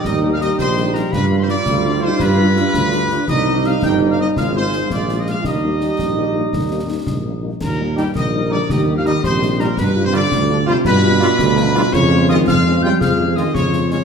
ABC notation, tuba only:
X:1
M:6/8
L:1/8
Q:3/8=111
K:Eb
V:1 name="Tuba" clef=bass
E,,3 B,,,3 | G,,3 D,,3 | G,,3 D,,3 | C,,3 G,,,3 |
A,,,3 B,,,3 | E,,3 B,,,3 | E,,3 B,,,3 | E,,3 B,,,3 |
E,,3 B,,,3 | G,,3 D,,3 | G,,3 D,,3 | [K:Dblyd] F,,3 F,,3 |
F,,3 F,,3 |]